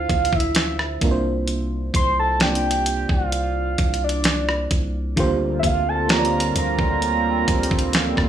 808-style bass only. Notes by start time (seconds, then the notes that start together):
0.10 D2
1.02 C2
1.94 C2
3.09 C2
3.79 C2
4.71 C2
5.17 D2
5.63 D2
6.56 D2
6.79 D2
7.48 D2
8.17 D2